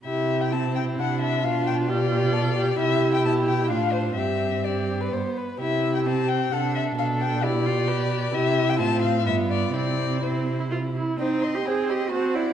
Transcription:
X:1
M:3/4
L:1/16
Q:1/4=130
K:C
V:1 name="Violin"
e3 g a2 g2 ^f2 e2 | f2 g2 d8 | e3 g a2 g2 f2 c2 | e4 d4 z4 |
e3 g a2 g2 ^f2 e2 | f2 g2 d8 | e3 g a2 f2 e2 d2 | d4 c4 z4 |
[K:Cm] g2 c'2 g2 c'2 =a2 ^f2 |]
V:2 name="Violin"
G4 E8 | F4 G2 G2 A2 G2 | G8 F4 | G4 G3 B c2 B2 |
G8 A4 | A4 G4 B4 | G4 F4 F4 | E4 E6 z2 |
[K:Cm] c2 e2 c2 e2 c2 d2 |]
V:3 name="Viola"
E4 C4 D4 | D4 F8 | E8 D4 | C8 B,2 z2 |
E4 C4 D4 | D4 E2 F2 G4 | E4 C4 B,4 | C4 C3 E F2 E2 |
[K:Cm] C4 C4 C4 |]
V:4 name="Cello" clef=bass
C,8 C,4 | B,,12 | C,4 B,,4 A,,4 | G,,8 G,,2 z2 |
C,8 C,4 | B,,12 | C,4 A,,4 G,,4 | C,8- C,2 z2 |
[K:Cm] E3 G A2 G2 ^F2 =E2 |]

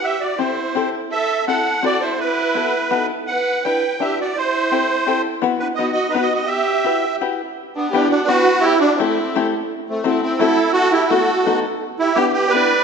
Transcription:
X:1
M:3/4
L:1/8
Q:1/4=168
K:Em
V:1 name="Accordion"
e d c3 z | e2 f2 d c | B4- B z | f2 g2 e d |
c4- c z | z B ^d d (3B d d | e4 z2 | z B, D D F2 |
E D C3 z | z A, C C E2 | F E F3 z | z E G G B2 |]
V:2 name="Violin"
G F E3 z | A2 A2 F E | E4- E z | B2 B2 G F |
E4- E z | z D F F (3^D F F | G4 z2 | z D G F B2 |
G F E3 z | z C E E A2 | A G A3 z | z G B B d2 |]
V:3 name="Five-string banjo"
z2 [CEGA] z [CEGA] z | z2 [CEFA] z [CEFA] z | z2 [B,EFA] z [B,^DFA] z | z2 [DEGB] z [DEGB] z |
z2 [CEGA] z [CEGA] z | [B,EFB]2 [B,^DFB] z [B,DFB] z | z2 [EFGB] z [EFGB] z | z2 [B,DEGB] z [B,DEGB] z |
z2 [A,CEGA] z [A,CEGA] z | z2 [A,CEFA] z [A,CEFA] z | z2 [A,B,EFA] z [A,B,^DFA] z | z2 [B,DEGB] z [B,DEGB] z |]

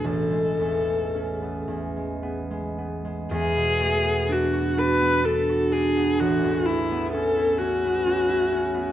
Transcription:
X:1
M:6/8
L:1/16
Q:3/8=42
K:A
V:1 name="Viola"
A6 z6 | G4 F2 B2 A2 G2 | F2 E2 A2 F6 |]
V:2 name="Harp"
[A,,,A,B,E] G, E,, G, C B, E,, G, B, G, B, G, | E,, B,, A, B, D F D B, D F D B, | A,,, E,, A, B, C E C B, C E C B, |]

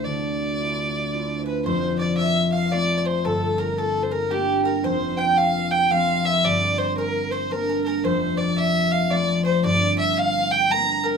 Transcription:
X:1
M:3/4
L:1/16
Q:"Swing" 1/4=113
K:Ddor
V:1 name="Fiddle"
d8- d2 B2 | [K:F] c2 d2 e2 f2 d3/2 d/2 c2 | A2 B2 A3/2 c/2 B2 G2 B2 | c2 g2 f2 g2 f2 e2 |
d2 c2 B2 c2 B2 B2 | c2 d2 e2 f2 d2 c2 | d2 e2 f2 g2 b2 B2 |]
V:2 name="Mandolin"
z8 z2 B2 | [K:F] c2 d2 e2 f3/2 e/2 d2 c2 | A2 B2 A2 B2 G2 B2 | c2 g2 f2 g2 f2 e2 |
d2 c2 B2 c2 (3B2 B2 B2 | c2 d2 e2 f2 d2 c2 | d2 e2 f2 g2 b2 B2 |]
V:3 name="Vibraphone"
d8- d3/2 c/2 B2 | [K:F] c4 e2 f2 d2 c2 | A2 B2 A2 B2 G2 B2 | c2 g/2 g/2 g f2 g2 f2 e2 |
d2 c2 B2 c2 B2 B2 | c2 d2 e4 d2 c2 | d2 e2 f2 g2 b/2 b/2 b B2 |]
V:4 name="Harp"
D,4 [DEF]4 [DEF]4 | [K:F] [F,,,F,,]8 [A,CF]4 | [G,,,G,,]8 [G,B,D]4 | [F,,,F,,]8 [F,A,C]4 |
[G,,,G,,]8 [G,B,D]4 | [F,,,F,,]8 [F,A,C]4 | [G,,,G,,]8 [G,B,D]4 |]
V:5 name="Harmonium" clef=bass
D,,12 | [K:F] z12 | z12 | z12 |
z12 | z12 | z12 |]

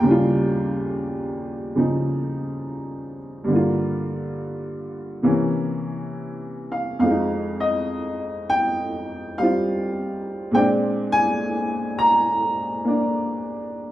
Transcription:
X:1
M:4/4
L:1/8
Q:"Swing" 1/4=69
K:Ebmix
V:1 name="Upright piano"
g6- g z | z6 z f | f e2 g2 f3 | g a2 b4- b |]
V:2 name="Upright piano" clef=bass
[E,,D,G,F]4 [D,F,E]4 | [G,,=D,B,F]4 [C,=E,B,_D]4 | [F,,F,A,E]4- [F,,F,A,E] [G,CF]3 | [B,,A,C=D]4- [B,,A,CD] [B,D]3 |]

